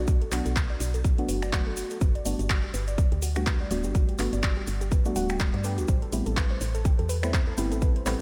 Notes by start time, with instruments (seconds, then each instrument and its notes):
Already playing: fm bass B1, synth stab F#3 A3 B3 D4 F#4
0.07 synth pluck D5, kick, closed hi-hat, shaker
0.22 synth pluck A4, closed hi-hat
0.31 fm bass B1, synth stab F#3 A3 B3 D4 F#4, synth pluck F#4, clap, open hi-hat, shaker
0.46 fm bass B1, synth pluck A4, closed hi-hat, shaker
0.56 synth pluck B4, kick, clap, closed hi-hat, shaker
0.70 synth pluck D5
0.80 fm bass B1, synth pluck D5, open hi-hat, shaker
0.94 synth pluck A4, closed hi-hat, shaker
1.04 synth pluck F#4, kick, closed hi-hat, shaker
1.18 synth stab F#3 A3 B3 D4 F#4, synth pluck A4, closed hi-hat
1.29 fm bass F#1, synth pluck B4, open hi-hat, shaker
1.42 synth pluck D5, finger snap, closed hi-hat, shaker
1.53 synth stab F#3 A3 B3 D4 F#4, synth pluck D5, kick, clap, closed hi-hat, shaker
1.67 synth pluck A4
1.77 synth pluck F#4, open hi-hat, shaker
1.90 synth pluck A4, closed hi-hat, shaker
2.01 fm bass G1, synth pluck B4, kick, closed hi-hat, shaker
2.15 synth pluck D5, closed hi-hat
2.25 fm bass G1, synth stab G3 A3 B3 D4 F#4, synth pluck D5, open hi-hat, shaker
2.39 fm bass G1, synth pluck G4, closed hi-hat, shaker
2.50 synth pluck F#4, kick, clap, closed hi-hat, shaker
2.64 synth pluck G4
2.74 fm bass G1, synth pluck B4, open hi-hat, shaker
2.88 synth pluck D5, closed hi-hat, shaker
2.98 kick, closed hi-hat, shaker
3.12 fm bass D2, synth pluck G4, closed hi-hat
3.22 synth pluck F#4, open hi-hat, shaker
3.35 synth stab G3 A3 B3 D4 F#4, synth pluck G4, finger snap, closed hi-hat, shaker
3.46 synth pluck B4, kick, clap, closed hi-hat, shaker
3.60 synth pluck D5
3.71 fm bass D1, synth stab G3 A3 B3 D4 F#4, synth pluck D5, open hi-hat, shaker
3.83 fm bass G1, synth pluck G4, closed hi-hat, shaker
3.95 synth pluck F#4, kick, closed hi-hat, shaker
4.09 synth pluck G4, closed hi-hat
4.18 fm bass G1, synth stab G3 A3 B3 D4 F#4, synth pluck B4, clap, open hi-hat, shaker
4.33 fm bass G1, synth pluck D5, closed hi-hat, shaker
4.43 synth pluck D5, kick, clap, closed hi-hat, shaker
4.57 synth pluck G4
4.67 fm bass G1, synth pluck F#4, open hi-hat, shaker
4.81 synth pluck G4, closed hi-hat, shaker
4.92 synth pluck B4, kick, closed hi-hat, shaker
5.05 synth stab G3 A3 B3 D4 F#4, synth pluck D5, closed hi-hat, shaker
5.16 fm bass D1, synth stab G3 A3 B3 D4 F#4, synth pluck F#5, open hi-hat, shaker
5.29 synth pluck G5, finger snap, closed hi-hat, shaker
5.39 synth pluck D5, kick, clap, closed hi-hat, shaker
5.54 fm bass G2, synth pluck D5, closed hi-hat
5.64 synth stab G3 A3 B3 D4 G4, synth pluck B4, open hi-hat, shaker
5.78 fm bass D2, synth pluck F#4, closed hi-hat, shaker
5.88 fm bass A1, synth pluck C5, kick, closed hi-hat, shaker
6.02 synth pluck A4, closed hi-hat
6.12 fm bass A1, synth stab G3 A3 B3 C4 E4, synth pluck G4, open hi-hat, shaker
6.26 fm bass A1, synth pluck A4, closed hi-hat, shaker
6.37 synth pluck B4, kick, clap, closed hi-hat, shaker
6.50 synth pluck C5
6.61 fm bass A1, synth pluck C5, open hi-hat, shaker
6.75 synth pluck A4, closed hi-hat, shaker
6.85 synth pluck G4, kick, closed hi-hat, shaker
6.99 fm bass E2, synth pluck A4, closed hi-hat
7.09 synth pluck B4, open hi-hat, shaker
7.23 synth stab G3 A3 B3 C4 E4, synth pluck C5, finger snap, closed hi-hat, shaker
7.33 kick, clap, closed hi-hat, shaker
7.47 synth pluck A4
7.57 fm bass G1, synth stab G3 A3 B3 C4 E4, synth pluck G4, open hi-hat, shaker
7.71 fm bass A1, synth pluck A4, closed hi-hat, shaker
7.82 synth pluck B4, kick, closed hi-hat, shaker
7.96 synth pluck C5, closed hi-hat
8.05 fm bass A1, synth stab G3 A3 B3 C4 E4, synth pluck C5, clap, open hi-hat, shaker